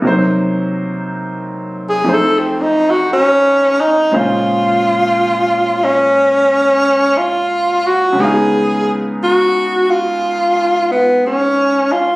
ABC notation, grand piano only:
X:1
M:4/4
L:1/8
Q:"Swing" 1/4=59
K:Bbm
V:1 name="Grand piano"
[C,G,B,Ec]4 [F,,F,=A,Ec]4 | [B,,D,A,Dc]8 | [D,A,_CEf]8 |]